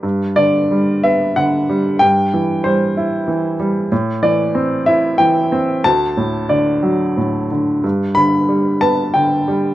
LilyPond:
<<
  \new Staff \with { instrumentName = "Upright piano" } { \time 3/4 \key g \major \tempo 4 = 92 r8 d''4 e''8 fis''4 | g''4 c''4. r8 | r8 d''4 e''8 g''4 | a''4 d''4. r8 |
r8 b''4 a''8 g''4 | }
  \new Staff \with { instrumentName = "Upright piano" } { \clef bass \time 3/4 \key g \major g,8 d8 g8 b8 d8 g8 | g,8 e8 g8 e'8 e8 g8 | a,8 e8 c'8 e'8 e8 c'8 | d,8 a,8 d8 fis8 a,8 d8 |
g,8 d8 g8 b8 d8 g8 | }
>>